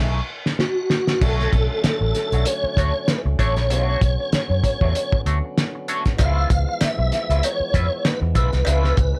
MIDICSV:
0, 0, Header, 1, 8, 480
1, 0, Start_track
1, 0, Tempo, 621118
1, 938, Time_signature, 4, 2, 24, 8
1, 7104, End_track
2, 0, Start_track
2, 0, Title_t, "Tonewheel organ"
2, 0, Program_c, 0, 16
2, 466, Note_on_c, 0, 66, 87
2, 951, Note_on_c, 0, 69, 91
2, 956, Note_off_c, 0, 66, 0
2, 1410, Note_off_c, 0, 69, 0
2, 1419, Note_on_c, 0, 69, 93
2, 1907, Note_on_c, 0, 73, 102
2, 1913, Note_off_c, 0, 69, 0
2, 2380, Note_on_c, 0, 71, 96
2, 2397, Note_off_c, 0, 73, 0
2, 2488, Note_off_c, 0, 71, 0
2, 2622, Note_on_c, 0, 73, 85
2, 4029, Note_off_c, 0, 73, 0
2, 4794, Note_on_c, 0, 77, 93
2, 5266, Note_on_c, 0, 76, 99
2, 5280, Note_off_c, 0, 77, 0
2, 5755, Note_off_c, 0, 76, 0
2, 5758, Note_on_c, 0, 73, 99
2, 6233, Note_on_c, 0, 71, 90
2, 6241, Note_off_c, 0, 73, 0
2, 6337, Note_off_c, 0, 71, 0
2, 6474, Note_on_c, 0, 71, 74
2, 7104, Note_off_c, 0, 71, 0
2, 7104, End_track
3, 0, Start_track
3, 0, Title_t, "Clean electric guitar"
3, 0, Program_c, 1, 27
3, 0, Note_on_c, 1, 57, 99
3, 0, Note_on_c, 1, 63, 87
3, 0, Note_on_c, 1, 68, 95
3, 0, Note_on_c, 1, 73, 91
3, 148, Note_off_c, 1, 57, 0
3, 149, Note_off_c, 1, 63, 0
3, 150, Note_off_c, 1, 68, 0
3, 153, Note_off_c, 1, 73, 0
3, 939, Note_on_c, 1, 57, 72
3, 944, Note_on_c, 1, 62, 85
3, 948, Note_on_c, 1, 66, 86
3, 950, Note_on_c, 1, 73, 87
3, 1162, Note_off_c, 1, 57, 0
3, 1164, Note_off_c, 1, 62, 0
3, 1166, Note_off_c, 1, 66, 0
3, 1167, Note_off_c, 1, 73, 0
3, 1802, Note_on_c, 1, 73, 79
3, 1807, Note_on_c, 1, 66, 74
3, 1811, Note_on_c, 1, 62, 68
3, 1814, Note_on_c, 1, 57, 64
3, 1888, Note_off_c, 1, 73, 0
3, 1891, Note_off_c, 1, 66, 0
3, 1893, Note_off_c, 1, 62, 0
3, 1894, Note_off_c, 1, 57, 0
3, 2146, Note_on_c, 1, 57, 82
3, 2150, Note_on_c, 1, 62, 90
3, 2153, Note_on_c, 1, 66, 100
3, 2154, Note_on_c, 1, 73, 93
3, 2258, Note_off_c, 1, 57, 0
3, 2260, Note_off_c, 1, 62, 0
3, 2261, Note_off_c, 1, 66, 0
3, 2262, Note_off_c, 1, 73, 0
3, 2618, Note_on_c, 1, 57, 81
3, 2623, Note_on_c, 1, 62, 94
3, 2623, Note_on_c, 1, 66, 101
3, 2630, Note_on_c, 1, 73, 86
3, 2734, Note_off_c, 1, 57, 0
3, 2736, Note_off_c, 1, 62, 0
3, 2736, Note_off_c, 1, 66, 0
3, 2740, Note_off_c, 1, 73, 0
3, 2868, Note_on_c, 1, 56, 79
3, 2871, Note_on_c, 1, 61, 88
3, 2873, Note_on_c, 1, 65, 92
3, 2878, Note_on_c, 1, 72, 99
3, 2961, Note_off_c, 1, 56, 0
3, 2961, Note_on_c, 1, 57, 79
3, 2963, Note_off_c, 1, 72, 0
3, 2963, Note_on_c, 1, 73, 99
3, 2964, Note_off_c, 1, 61, 0
3, 2964, Note_on_c, 1, 62, 88
3, 2966, Note_off_c, 1, 65, 0
3, 2966, Note_on_c, 1, 66, 92
3, 3086, Note_off_c, 1, 57, 0
3, 3087, Note_off_c, 1, 62, 0
3, 3088, Note_off_c, 1, 66, 0
3, 3091, Note_off_c, 1, 73, 0
3, 3727, Note_on_c, 1, 73, 86
3, 3728, Note_on_c, 1, 66, 85
3, 3733, Note_on_c, 1, 57, 73
3, 3733, Note_on_c, 1, 62, 78
3, 3810, Note_off_c, 1, 73, 0
3, 3811, Note_off_c, 1, 66, 0
3, 3813, Note_off_c, 1, 62, 0
3, 3814, Note_off_c, 1, 57, 0
3, 4067, Note_on_c, 1, 57, 75
3, 4069, Note_on_c, 1, 62, 66
3, 4071, Note_on_c, 1, 66, 75
3, 4075, Note_on_c, 1, 73, 74
3, 4153, Note_off_c, 1, 57, 0
3, 4154, Note_off_c, 1, 62, 0
3, 4155, Note_off_c, 1, 66, 0
3, 4157, Note_off_c, 1, 73, 0
3, 4547, Note_on_c, 1, 57, 83
3, 4548, Note_on_c, 1, 62, 90
3, 4553, Note_on_c, 1, 66, 94
3, 4554, Note_on_c, 1, 73, 101
3, 4658, Note_off_c, 1, 57, 0
3, 4658, Note_off_c, 1, 62, 0
3, 4661, Note_off_c, 1, 66, 0
3, 4661, Note_off_c, 1, 73, 0
3, 4790, Note_on_c, 1, 61, 88
3, 4799, Note_on_c, 1, 65, 92
3, 4799, Note_on_c, 1, 71, 84
3, 4801, Note_on_c, 1, 76, 104
3, 5007, Note_off_c, 1, 61, 0
3, 5011, Note_off_c, 1, 65, 0
3, 5011, Note_off_c, 1, 71, 0
3, 5012, Note_off_c, 1, 76, 0
3, 5640, Note_on_c, 1, 76, 72
3, 5646, Note_on_c, 1, 61, 69
3, 5646, Note_on_c, 1, 65, 74
3, 5646, Note_on_c, 1, 71, 79
3, 5727, Note_off_c, 1, 76, 0
3, 5730, Note_off_c, 1, 61, 0
3, 5730, Note_off_c, 1, 65, 0
3, 5730, Note_off_c, 1, 71, 0
3, 5986, Note_on_c, 1, 61, 75
3, 5989, Note_on_c, 1, 65, 65
3, 5990, Note_on_c, 1, 71, 87
3, 5994, Note_on_c, 1, 76, 91
3, 6072, Note_off_c, 1, 61, 0
3, 6074, Note_off_c, 1, 65, 0
3, 6074, Note_off_c, 1, 71, 0
3, 6076, Note_off_c, 1, 76, 0
3, 6453, Note_on_c, 1, 61, 72
3, 6453, Note_on_c, 1, 65, 77
3, 6459, Note_on_c, 1, 71, 86
3, 6461, Note_on_c, 1, 76, 92
3, 6570, Note_off_c, 1, 61, 0
3, 6571, Note_off_c, 1, 65, 0
3, 6574, Note_off_c, 1, 71, 0
3, 6575, Note_off_c, 1, 76, 0
3, 6686, Note_on_c, 1, 61, 97
3, 6693, Note_on_c, 1, 65, 98
3, 6698, Note_on_c, 1, 71, 93
3, 6699, Note_on_c, 1, 76, 99
3, 6914, Note_off_c, 1, 61, 0
3, 6918, Note_off_c, 1, 65, 0
3, 6920, Note_off_c, 1, 71, 0
3, 6921, Note_off_c, 1, 76, 0
3, 7104, End_track
4, 0, Start_track
4, 0, Title_t, "Tonewheel organ"
4, 0, Program_c, 2, 16
4, 935, Note_on_c, 2, 61, 70
4, 936, Note_on_c, 2, 54, 59
4, 939, Note_on_c, 2, 57, 57
4, 943, Note_on_c, 2, 50, 58
4, 2839, Note_off_c, 2, 57, 0
4, 2841, Note_on_c, 2, 59, 58
4, 4745, Note_off_c, 2, 54, 0
4, 4745, Note_off_c, 2, 61, 0
4, 4749, Note_off_c, 2, 50, 0
4, 4760, Note_on_c, 2, 56, 56
4, 4764, Note_on_c, 2, 53, 66
4, 4765, Note_on_c, 2, 52, 74
4, 6657, Note_off_c, 2, 59, 0
4, 6683, Note_on_c, 2, 61, 66
4, 7104, Note_off_c, 2, 52, 0
4, 7104, Note_off_c, 2, 53, 0
4, 7104, Note_off_c, 2, 56, 0
4, 7104, Note_off_c, 2, 61, 0
4, 7104, End_track
5, 0, Start_track
5, 0, Title_t, "Fingered electric bass"
5, 0, Program_c, 3, 33
5, 0, Note_on_c, 3, 35, 114
5, 148, Note_off_c, 3, 35, 0
5, 937, Note_on_c, 3, 35, 98
5, 1131, Note_off_c, 3, 35, 0
5, 1181, Note_on_c, 3, 35, 87
5, 1288, Note_off_c, 3, 35, 0
5, 1551, Note_on_c, 3, 33, 79
5, 1637, Note_off_c, 3, 33, 0
5, 1795, Note_on_c, 3, 35, 82
5, 1879, Note_off_c, 3, 35, 0
5, 2140, Note_on_c, 3, 38, 77
5, 2247, Note_off_c, 3, 38, 0
5, 2514, Note_on_c, 3, 37, 91
5, 2598, Note_off_c, 3, 37, 0
5, 2617, Note_on_c, 3, 33, 81
5, 2758, Note_off_c, 3, 33, 0
5, 2758, Note_on_c, 3, 34, 88
5, 2856, Note_off_c, 3, 34, 0
5, 2856, Note_on_c, 3, 35, 101
5, 3050, Note_off_c, 3, 35, 0
5, 3103, Note_on_c, 3, 35, 97
5, 3209, Note_off_c, 3, 35, 0
5, 3476, Note_on_c, 3, 42, 89
5, 3559, Note_off_c, 3, 42, 0
5, 3718, Note_on_c, 3, 40, 88
5, 3800, Note_off_c, 3, 40, 0
5, 4063, Note_on_c, 3, 38, 88
5, 4169, Note_off_c, 3, 38, 0
5, 4788, Note_on_c, 3, 37, 94
5, 4977, Note_off_c, 3, 37, 0
5, 5027, Note_on_c, 3, 37, 102
5, 5131, Note_off_c, 3, 37, 0
5, 5398, Note_on_c, 3, 35, 92
5, 5480, Note_off_c, 3, 35, 0
5, 5638, Note_on_c, 3, 37, 85
5, 5720, Note_off_c, 3, 37, 0
5, 5981, Note_on_c, 3, 41, 89
5, 6088, Note_off_c, 3, 41, 0
5, 6348, Note_on_c, 3, 40, 100
5, 6434, Note_off_c, 3, 40, 0
5, 6458, Note_on_c, 3, 35, 85
5, 6565, Note_off_c, 3, 35, 0
5, 6595, Note_on_c, 3, 36, 86
5, 6678, Note_off_c, 3, 36, 0
5, 6697, Note_on_c, 3, 37, 97
5, 6890, Note_off_c, 3, 37, 0
5, 6937, Note_on_c, 3, 37, 97
5, 7045, Note_off_c, 3, 37, 0
5, 7104, End_track
6, 0, Start_track
6, 0, Title_t, "Muted clean electric guitar strokes"
6, 1315, Note_on_c, 9, 29, 44
6, 1393, Note_off_c, 9, 29, 0
6, 1427, Note_on_c, 9, 29, 36
6, 1504, Note_off_c, 9, 29, 0
6, 1557, Note_on_c, 9, 29, 48
6, 1634, Note_off_c, 9, 29, 0
6, 2040, Note_on_c, 9, 29, 39
6, 2117, Note_off_c, 9, 29, 0
6, 2518, Note_on_c, 9, 29, 50
6, 2596, Note_off_c, 9, 29, 0
6, 2759, Note_on_c, 9, 29, 51
6, 2836, Note_off_c, 9, 29, 0
6, 3248, Note_on_c, 9, 29, 50
6, 3325, Note_off_c, 9, 29, 0
6, 3347, Note_on_c, 9, 29, 41
6, 3425, Note_off_c, 9, 29, 0
6, 3487, Note_on_c, 9, 29, 46
6, 3565, Note_off_c, 9, 29, 0
6, 3833, Note_on_c, 9, 29, 40
6, 3910, Note_off_c, 9, 29, 0
6, 4209, Note_on_c, 9, 29, 39
6, 4286, Note_off_c, 9, 29, 0
6, 4444, Note_on_c, 9, 29, 46
6, 4522, Note_off_c, 9, 29, 0
6, 5165, Note_on_c, 9, 29, 48
6, 5243, Note_off_c, 9, 29, 0
6, 5267, Note_on_c, 9, 29, 43
6, 5344, Note_off_c, 9, 29, 0
6, 5400, Note_on_c, 9, 29, 35
6, 5478, Note_off_c, 9, 29, 0
6, 6121, Note_on_c, 9, 29, 44
6, 6198, Note_off_c, 9, 29, 0
6, 6356, Note_on_c, 9, 29, 56
6, 6434, Note_off_c, 9, 29, 0
6, 6589, Note_on_c, 9, 29, 51
6, 6666, Note_off_c, 9, 29, 0
6, 7068, Note_on_c, 9, 29, 52
6, 7104, Note_off_c, 9, 29, 0
6, 7104, End_track
7, 0, Start_track
7, 0, Title_t, "Muted fingered electric bass strokes"
7, 1419, Note_on_c, 9, 29, 46
7, 1497, Note_off_c, 9, 29, 0
7, 2037, Note_on_c, 9, 29, 47
7, 2114, Note_off_c, 9, 29, 0
7, 3345, Note_on_c, 9, 29, 51
7, 3423, Note_off_c, 9, 29, 0
7, 3961, Note_on_c, 9, 29, 51
7, 4038, Note_off_c, 9, 29, 0
7, 5269, Note_on_c, 9, 29, 47
7, 5346, Note_off_c, 9, 29, 0
7, 5874, Note_on_c, 9, 29, 47
7, 5951, Note_off_c, 9, 29, 0
7, 7104, End_track
8, 0, Start_track
8, 0, Title_t, "Drums"
8, 355, Note_on_c, 9, 38, 74
8, 432, Note_off_c, 9, 38, 0
8, 455, Note_on_c, 9, 38, 80
8, 533, Note_off_c, 9, 38, 0
8, 695, Note_on_c, 9, 38, 86
8, 773, Note_off_c, 9, 38, 0
8, 830, Note_on_c, 9, 38, 78
8, 907, Note_off_c, 9, 38, 0
8, 938, Note_on_c, 9, 49, 92
8, 939, Note_on_c, 9, 36, 122
8, 1015, Note_off_c, 9, 49, 0
8, 1016, Note_off_c, 9, 36, 0
8, 1078, Note_on_c, 9, 38, 34
8, 1155, Note_off_c, 9, 38, 0
8, 1179, Note_on_c, 9, 36, 104
8, 1181, Note_on_c, 9, 42, 74
8, 1257, Note_off_c, 9, 36, 0
8, 1258, Note_off_c, 9, 42, 0
8, 1419, Note_on_c, 9, 42, 81
8, 1422, Note_on_c, 9, 38, 99
8, 1496, Note_off_c, 9, 42, 0
8, 1499, Note_off_c, 9, 38, 0
8, 1659, Note_on_c, 9, 42, 68
8, 1662, Note_on_c, 9, 38, 39
8, 1736, Note_off_c, 9, 42, 0
8, 1739, Note_off_c, 9, 38, 0
8, 1795, Note_on_c, 9, 42, 48
8, 1872, Note_off_c, 9, 42, 0
8, 1897, Note_on_c, 9, 42, 107
8, 1975, Note_off_c, 9, 42, 0
8, 2140, Note_on_c, 9, 36, 78
8, 2146, Note_on_c, 9, 42, 73
8, 2217, Note_off_c, 9, 36, 0
8, 2224, Note_off_c, 9, 42, 0
8, 2379, Note_on_c, 9, 38, 119
8, 2380, Note_on_c, 9, 42, 91
8, 2456, Note_off_c, 9, 38, 0
8, 2457, Note_off_c, 9, 42, 0
8, 2619, Note_on_c, 9, 36, 87
8, 2622, Note_on_c, 9, 42, 71
8, 2696, Note_off_c, 9, 36, 0
8, 2699, Note_off_c, 9, 42, 0
8, 2755, Note_on_c, 9, 42, 41
8, 2756, Note_on_c, 9, 38, 36
8, 2833, Note_off_c, 9, 38, 0
8, 2833, Note_off_c, 9, 42, 0
8, 2862, Note_on_c, 9, 42, 88
8, 2940, Note_off_c, 9, 42, 0
8, 3102, Note_on_c, 9, 36, 101
8, 3104, Note_on_c, 9, 42, 73
8, 3179, Note_off_c, 9, 36, 0
8, 3181, Note_off_c, 9, 42, 0
8, 3342, Note_on_c, 9, 42, 86
8, 3345, Note_on_c, 9, 38, 91
8, 3419, Note_off_c, 9, 42, 0
8, 3422, Note_off_c, 9, 38, 0
8, 3582, Note_on_c, 9, 36, 84
8, 3586, Note_on_c, 9, 42, 72
8, 3660, Note_off_c, 9, 36, 0
8, 3663, Note_off_c, 9, 42, 0
8, 3718, Note_on_c, 9, 36, 83
8, 3796, Note_off_c, 9, 36, 0
8, 3827, Note_on_c, 9, 42, 105
8, 3904, Note_off_c, 9, 42, 0
8, 3960, Note_on_c, 9, 36, 100
8, 4037, Note_off_c, 9, 36, 0
8, 4067, Note_on_c, 9, 42, 78
8, 4144, Note_off_c, 9, 42, 0
8, 4309, Note_on_c, 9, 38, 106
8, 4310, Note_on_c, 9, 42, 99
8, 4386, Note_off_c, 9, 38, 0
8, 4387, Note_off_c, 9, 42, 0
8, 4546, Note_on_c, 9, 42, 69
8, 4623, Note_off_c, 9, 42, 0
8, 4679, Note_on_c, 9, 42, 39
8, 4680, Note_on_c, 9, 38, 34
8, 4681, Note_on_c, 9, 36, 80
8, 4756, Note_off_c, 9, 42, 0
8, 4757, Note_off_c, 9, 38, 0
8, 4759, Note_off_c, 9, 36, 0
8, 4780, Note_on_c, 9, 56, 71
8, 4784, Note_on_c, 9, 42, 86
8, 4785, Note_on_c, 9, 36, 116
8, 4857, Note_off_c, 9, 56, 0
8, 4861, Note_off_c, 9, 42, 0
8, 4863, Note_off_c, 9, 36, 0
8, 5024, Note_on_c, 9, 36, 109
8, 5024, Note_on_c, 9, 42, 68
8, 5101, Note_off_c, 9, 42, 0
8, 5102, Note_off_c, 9, 36, 0
8, 5260, Note_on_c, 9, 42, 93
8, 5261, Note_on_c, 9, 56, 76
8, 5263, Note_on_c, 9, 38, 91
8, 5338, Note_off_c, 9, 42, 0
8, 5338, Note_off_c, 9, 56, 0
8, 5341, Note_off_c, 9, 38, 0
8, 5502, Note_on_c, 9, 42, 77
8, 5504, Note_on_c, 9, 38, 37
8, 5579, Note_off_c, 9, 42, 0
8, 5582, Note_off_c, 9, 38, 0
8, 5645, Note_on_c, 9, 42, 55
8, 5722, Note_off_c, 9, 42, 0
8, 5743, Note_on_c, 9, 42, 100
8, 5749, Note_on_c, 9, 56, 68
8, 5821, Note_off_c, 9, 42, 0
8, 5826, Note_off_c, 9, 56, 0
8, 5982, Note_on_c, 9, 36, 94
8, 5984, Note_on_c, 9, 42, 86
8, 6059, Note_off_c, 9, 36, 0
8, 6062, Note_off_c, 9, 42, 0
8, 6220, Note_on_c, 9, 38, 119
8, 6220, Note_on_c, 9, 56, 71
8, 6221, Note_on_c, 9, 42, 91
8, 6297, Note_off_c, 9, 38, 0
8, 6298, Note_off_c, 9, 42, 0
8, 6298, Note_off_c, 9, 56, 0
8, 6455, Note_on_c, 9, 42, 65
8, 6456, Note_on_c, 9, 36, 92
8, 6532, Note_off_c, 9, 42, 0
8, 6533, Note_off_c, 9, 36, 0
8, 6590, Note_on_c, 9, 42, 41
8, 6591, Note_on_c, 9, 38, 31
8, 6668, Note_off_c, 9, 38, 0
8, 6668, Note_off_c, 9, 42, 0
8, 6684, Note_on_c, 9, 56, 72
8, 6697, Note_on_c, 9, 42, 96
8, 6761, Note_off_c, 9, 56, 0
8, 6774, Note_off_c, 9, 42, 0
8, 6832, Note_on_c, 9, 38, 39
8, 6910, Note_off_c, 9, 38, 0
8, 6932, Note_on_c, 9, 42, 70
8, 6935, Note_on_c, 9, 36, 95
8, 7010, Note_off_c, 9, 42, 0
8, 7013, Note_off_c, 9, 36, 0
8, 7104, End_track
0, 0, End_of_file